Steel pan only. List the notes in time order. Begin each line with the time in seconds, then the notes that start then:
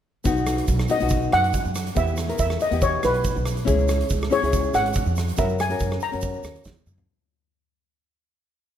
0.91 D#5
1.33 F#5
1.97 E5
2.40 E5
2.62 D#5
2.83 C#5
3.05 B4
4.33 C#5
4.75 F#5
5.39 E5
5.61 G#5
6.03 A#5